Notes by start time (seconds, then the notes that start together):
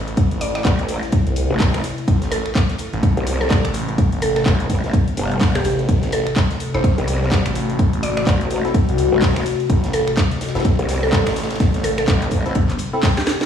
Already playing: A1 C3 A3 E4, impact
0.08 closed hi-hat
0.17 kick, closed hi-hat, ride
0.31 A1, closed hi-hat
0.41 D5, open hi-hat, ride
0.55 D5, finger snap, snare
0.64 A1, kick, snare, clap, closed hi-hat, ride
0.79 closed hi-hat
0.89 open hi-hat, ride
1.03 snare, closed hi-hat
1.12 kick, closed hi-hat, ride
1.27 C2, closed hi-hat
1.36 open hi-hat, ride
1.50 A1
1.60 kick, snare, clap, closed hi-hat, open hi-hat
1.74 finger snap, snare, closed hi-hat
1.83 snare, open hi-hat, ride
1.98 closed hi-hat
2.08 A1, kick, closed hi-hat, ride
2.22 snare, closed hi-hat
2.31 A4, snare, open hi-hat, ride
2.46 finger snap
2.55 kick, snare, clap, closed hi-hat, ride
2.69 snare, closed hi-hat
2.78 open hi-hat, ride
2.93 A1, closed hi-hat
3.03 kick, closed hi-hat, ride
3.17 C2, closed hi-hat
3.27 open hi-hat, ride
3.41 A4, snare
3.50 A4, kick, snare, clap, closed hi-hat, ride
3.65 A1, finger snap, closed hi-hat, ride
3.74 snare, open hi-hat, ride
3.89 closed hi-hat
3.98 kick, closed hi-hat, ride
4.12 A1, closed hi-hat
4.22 A4, open hi-hat, ride
4.36 A4, finger snap, snare
4.45 A1, kick, snare, clap, closed hi-hat, ride
4.60 closed hi-hat
4.70 kick, open hi-hat, ride
4.84 A1, snare, closed hi-hat
4.93 kick, closed hi-hat, ride
5.08 closed hi-hat
5.17 G1, open hi-hat, ride
5.31 closed hi-hat
5.40 kick, snare, clap, closed hi-hat, open hi-hat
5.55 G4, finger snap, snare, closed hi-hat
5.64 A1 G4, snare, open hi-hat, ride
5.79 closed hi-hat
5.89 A1 F#4, kick, closed hi-hat, ride
6.02 snare, closed hi-hat
6.12 A4, snare, open hi-hat, ride
6.27 finger snap
6.36 kick, snare, clap, closed hi-hat, ride
6.51 snare, closed hi-hat
6.60 open hi-hat, ride
6.74 A1 C4 E4 A4 C5, closed hi-hat
6.84 kick, closed hi-hat, ride
6.98 C2, closed hi-hat
7.08 open hi-hat, ride
7.23 snare
7.31 kick, snare, clap, closed hi-hat, ride
7.46 A1, finger snap, closed hi-hat, ride
7.55 snare, open hi-hat, ride
7.70 closed hi-hat
7.79 kick, closed hi-hat, ride
7.93 A1, closed hi-hat
8.03 D5, open hi-hat, ride
8.17 D5, finger snap, snare
8.27 A1, kick, snare, clap, closed hi-hat, ride
8.41 closed hi-hat
8.50 open hi-hat, ride
8.65 C4 E4 A4, snare, closed hi-hat
8.74 kick, closed hi-hat, ride
8.89 C2, closed hi-hat
8.98 open hi-hat, ride
9.12 A1
9.22 kick, snare, clap, closed hi-hat, open hi-hat
9.36 finger snap, snare, closed hi-hat
9.46 snare, open hi-hat, ride
9.60 closed hi-hat
9.70 A1, kick, closed hi-hat, ride
9.84 snare, closed hi-hat
9.93 A4, snare, open hi-hat, ride
10.08 finger snap
10.17 kick, snare, clap, closed hi-hat, ride
10.31 snare, closed hi-hat
10.41 snare, open hi-hat, ride
10.48 snare, ride
10.55 A1 C4 E4 A4, snare, closed hi-hat, ride
10.60 snare, ride
10.65 kick, closed hi-hat, ride
10.79 C2, closed hi-hat
10.88 snare, open hi-hat
11.03 A4, snare
11.13 A4, kick, snare, clap, closed hi-hat, ride
11.26 A1, finger snap, snare, closed hi-hat, open hi-hat
11.36 snare, open hi-hat, ride
11.43 snare, ride
11.50 snare, closed hi-hat, ride
11.55 snare, ride
11.60 kick, snare, closed hi-hat, open hi-hat
11.74 A1, snare, closed hi-hat
11.84 A4, snare, open hi-hat, ride
11.98 A4, finger snap, snare, closed hi-hat
12.08 A1, kick, snare, clap, closed hi-hat, ride
12.22 clap, closed hi-hat
12.31 kick, open hi-hat, ride
12.45 A1 C4 E4 A4, snare, closed hi-hat
12.55 G1, kick, closed hi-hat, ride
12.70 clap, closed hi-hat
12.78 open hi-hat, ride
12.93 C4 E4 A4
13.03 kick, snare, clap, closed hi-hat, open hi-hat
13.17 G4, snare, closed hi-hat
13.26 G4, snare, open hi-hat, ride
13.41 snare, closed hi-hat